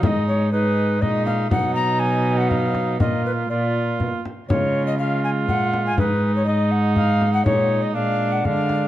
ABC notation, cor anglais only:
X:1
M:3/4
L:1/8
Q:1/4=121
K:Abdor
V:1 name="Cor anglais"
E2 E2 E2 | ^D6 | F2 F3 z | F2 F4 |
E2 E4 | E2 =D2 D2 |]